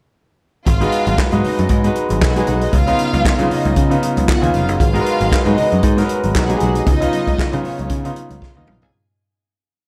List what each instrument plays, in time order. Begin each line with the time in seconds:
0.66 picked electric bass G#1, french horn section F#3 G#3 B4, string section F4 F5, kick, closed hi-hat
0.81 grand piano G#3 D#4 F#4 B4, closed hi-hat
0.92 closed hi-hat
1.06 picked electric bass G#1, closed hi-hat, high conga
1.18 kick, snare, clap
1.32 picked electric bass G#2, grand piano G#3 D#4 F#4 B4, closed hi-hat, high conga
1.43 string section D#4 D#5, open hi-hat, low conga
1.58 picked electric bass F#2, closed hi-hat, high conga
1.69 picked electric bass G#2, kick, closed hi-hat
1.84 grand piano G#3 D#4 F#4 B4, closed hi-hat
1.95 closed hi-hat, muted conga
2.09 picked electric bass G#1, closed hi-hat, high conga
2.22 picked electric bass B1, string section F#4 F#5, kick, snare, clap
2.36 grand piano G#3 D#4 F#4 B4, string section G#4 G#5, closed hi-hat
2.47 picked electric bass B1, string section F#4 F#5, closed hi-hat, muted conga, high conga, low conga
2.61 string section D#4 D#5, closed hi-hat
2.73 picked electric bass C#2, french horn section C#3 B3 D#4 F4, string section F4 F5, kick, closed hi-hat
2.87 grand piano C#3 B3 D#4 F4, closed hi-hat
2.99 closed hi-hat, muted conga
3.13 picked electric bass C#2, closed hi-hat, high conga
3.25 kick, snare, clap
3.39 grand piano C#3 B3 D#4 F4, picked electric bass C#3, closed hi-hat, high conga
3.51 string section D#4 D#5, open hi-hat, muted conga, low conga
3.65 picked electric bass C#2, closed hi-hat, high conga
3.76 picked electric bass C#3, kick, closed hi-hat, muted conga
3.90 grand piano C#3 B3 D#4 F4, closed hi-hat
4.03 closed hi-hat, muted conga
4.16 picked electric bass C#2, closed hi-hat, high conga
4.28 string section F#4 F#5, kick, snare, clap, muted conga
4.42 picked electric bass D#2, grand piano C#3 B3 D#4 F4, string section G#4 G#5, closed hi-hat
4.54 picked electric bass F1, string section F4 F5, closed hi-hat, muted conga, high conga, low conga
4.68 picked electric bass F#1, string section D#4 D#5, closed hi-hat
4.79 picked electric bass G#1, french horn section F#3 G#3 B4, string section F4 F5, kick, closed hi-hat
4.93 grand piano G#3 D#4 F#4 A#4, closed hi-hat
5.01 grand piano B4
5.06 closed hi-hat
5.20 picked electric bass G#1, closed hi-hat, high conga
5.32 kick, snare, clap
5.45 picked electric bass G#2, grand piano G#3 D#4 F#4 B4, closed hi-hat, high conga
5.58 string section D#4 D#5, open hi-hat, muted conga, low conga
5.72 picked electric bass F#2, closed hi-hat, high conga
5.83 picked electric bass G#2, kick, closed hi-hat, muted conga
5.97 grand piano G#3 D#4 F#4 A#4, snare, closed hi-hat
6.04 grand piano B4
6.09 closed hi-hat, muted conga
6.23 picked electric bass G#1, closed hi-hat, high conga
6.35 picked electric bass B1, string section F#4 F#5, kick, snare, clap
6.49 grand piano G#3 D#4 F#4 G4, string section G#4 G#5, closed hi-hat
6.57 grand piano G#4, string section F#5, closed hi-hat
6.61 picked electric bass B1, string section F#4, high conga, low conga
6.75 string section D#4 D#5, closed hi-hat
6.86 picked electric bass C#2, french horn section C#3 B3 D#4 F4, string section D#4 D#5, kick, closed hi-hat, muted conga
7.00 grand piano C#3 B3 D#4 F4, closed hi-hat
7.13 closed hi-hat, muted conga, high conga
7.27 picked electric bass C#2, kick, closed hi-hat, high conga
7.39 muted picked electric bass stroke, kick, snare, clap
7.52 grand piano C#3 B3 D#4 F4, picked electric bass C#3, closed hi-hat, high conga
7.64 string section C#4 C#5, open hi-hat, low conga
7.79 picked electric bass C#2, closed hi-hat, high conga
7.89 picked electric bass C#3, kick, closed hi-hat, muted conga
8.04 grand piano C#3 B3 D#4 F4, closed hi-hat
8.16 closed hi-hat, muted conga
8.29 picked electric bass C#2, closed hi-hat, high conga
8.42 string section F4 F5, kick, snare
8.56 picked electric bass D#2, grand piano C#3 B3 D#4 F4, string section D#4 D#5
8.67 picked electric bass A#1, string section F4 F5, mid tom, high conga, low conga
8.82 picked electric bass B1, string section G#4 G#5, floor tom